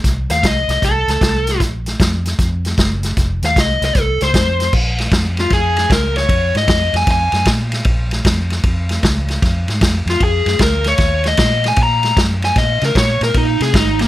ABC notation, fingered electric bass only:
X:1
M:4/4
L:1/8
Q:"Swing" 1/4=153
K:Bbm
V:1 name="Fingered electric bass" clef=bass
C,, E,, C,, C,, C,, D,, C,,2 | B,,,2 F,,2 F,,2 G,,,2 | F,,, E,, C,, C,, C,, D,, F,,2 | B,,,2 F,,2 F,,2 D,,2 |
F,, A,, F,, F,, F,, G,, B,,2 | B,,,2 F,,2 F,,2 D,,2 | F,, A,, F,, F,, F,, G,, =D,,2 | E,,2 B,,2 B,,2 G,,2 |
B,, D, B,, B,, B,, C, A,,,2 |]